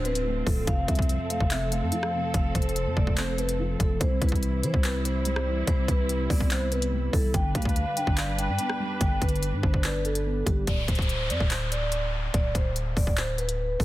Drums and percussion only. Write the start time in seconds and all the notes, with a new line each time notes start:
0.05 closed hi-hat
0.15 closed hi-hat
0.47 kick, open hi-hat
0.67 kick, closed hi-hat
0.88 kick, closed hi-hat
0.95 kick, closed hi-hat
1.02 closed hi-hat
1.09 closed hi-hat
1.30 closed hi-hat
1.40 kick
1.50 clap, closed hi-hat
1.72 closed hi-hat
1.92 closed hi-hat
2.03 cross-stick
2.34 kick, closed hi-hat
2.55 kick, closed hi-hat
2.62 closed hi-hat
2.69 closed hi-hat
2.76 closed hi-hat
2.97 kick
3.07 kick
3.17 clap, closed hi-hat
3.38 closed hi-hat
3.49 closed hi-hat
3.80 kick, closed hi-hat
4.01 kick, closed hi-hat
4.22 kick, closed hi-hat
4.29 kick, closed hi-hat
4.36 closed hi-hat
4.43 closed hi-hat
4.63 closed hi-hat
4.74 kick
4.84 clap, closed hi-hat
5.05 closed hi-hat
5.25 closed hi-hat
5.36 cross-stick
5.67 kick, closed hi-hat
5.88 kick, closed hi-hat
6.09 closed hi-hat
6.30 kick, open hi-hat
6.40 kick
6.50 clap, closed hi-hat
6.72 closed hi-hat
6.82 closed hi-hat
7.13 kick, open hi-hat
7.34 kick, closed hi-hat
7.55 kick, closed hi-hat
7.62 kick, closed hi-hat
7.69 closed hi-hat
7.76 closed hi-hat
7.97 closed hi-hat
8.07 kick
8.17 clap, closed hi-hat
8.39 closed hi-hat
8.59 closed hi-hat
8.70 cross-stick
9.01 kick, closed hi-hat
9.22 kick, closed hi-hat
9.29 closed hi-hat
9.36 closed hi-hat
9.43 closed hi-hat
9.63 kick
9.74 kick
9.84 clap, closed hi-hat
10.05 closed hi-hat
10.15 closed hi-hat
10.47 kick, closed hi-hat
10.67 kick, closed hi-hat
10.88 kick, closed hi-hat
10.95 kick, closed hi-hat
11.02 closed hi-hat
11.09 closed hi-hat
11.30 closed hi-hat
11.40 kick
11.50 clap, closed hi-hat
11.72 closed hi-hat
11.92 closed hi-hat
12.34 kick, closed hi-hat
12.55 kick, closed hi-hat
12.76 closed hi-hat
12.97 kick, open hi-hat
13.07 kick
13.17 clap, closed hi-hat
13.38 closed hi-hat
13.49 closed hi-hat
13.80 kick, open hi-hat